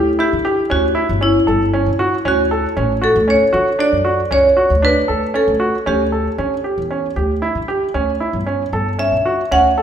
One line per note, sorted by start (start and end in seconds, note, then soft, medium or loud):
0.00 0.23 D2 medium
0.00 0.16 E4 medium
0.19 0.33 E4 medium
0.19 0.73 G4 medium
0.33 0.62 D3 medium
0.45 0.59 G4 medium
0.70 1.00 D2 medium
0.70 0.84 C#4 medium
0.70 1.19 F#4 medium
0.95 1.10 E4 medium
1.09 1.39 G1 medium
1.21 1.36 C#4 medium
1.21 1.96 E4 medium
1.47 1.88 G1 medium
1.47 1.62 A4 medium
1.73 1.88 C#4 medium
1.86 2.06 D3 medium
1.99 2.14 F#4 medium
2.25 2.65 D2 medium
2.25 2.40 C#4 medium
2.25 3.06 F#4 medium
2.51 2.65 A4 medium
2.77 3.06 A1 medium
2.77 2.91 C#4 medium
3.02 3.16 F#4 medium
3.02 3.29 A4 medium
3.16 3.35 D2 medium
3.28 3.42 C#4 medium
3.28 3.82 C#5 medium
3.53 3.73 D3 medium
3.53 3.67 F#4 medium
3.79 3.93 D4 medium
3.79 4.28 D5 medium
3.92 4.22 F#2 medium
4.05 4.19 F#4 medium
4.31 4.51 C#2 medium
4.31 4.45 C#4 medium
4.31 4.80 C#5 medium
4.57 4.71 F#4 soft
4.70 5.00 D2 medium
4.82 4.97 D4 medium
4.82 5.37 B4 medium
5.08 5.29 D2 medium
5.08 5.23 A4 soft
5.34 5.49 C#4 medium
5.34 5.84 A4 medium
5.48 5.68 D2 medium
5.60 5.75 F#4 medium
5.86 6.27 D2 medium
5.86 6.01 C#4 medium
5.86 6.35 G4 medium
6.12 6.27 A4 soft
6.38 6.58 D3 medium
6.38 6.53 C#4 medium
6.64 6.79 G4 soft
6.78 7.07 E2 medium
6.91 7.05 C#4 soft
7.16 7.46 D2 medium
7.16 7.31 G4 soft
7.42 7.57 E4 medium
7.55 7.85 D3 medium
7.68 7.83 G4 medium
7.94 8.24 D2 medium
7.94 8.09 C#4 medium
8.20 8.35 E4 soft
8.33 8.63 G1 medium
8.46 8.61 C#4 medium
8.73 9.14 G1 medium
8.73 8.88 A4 soft
8.99 9.14 C#4 medium
8.99 9.48 E5 medium
9.12 9.32 D3 medium
9.26 9.40 F#4 medium
9.51 9.82 D2 medium
9.51 9.66 C#4 medium
9.51 9.82 F#5 medium
9.78 9.82 A4 soft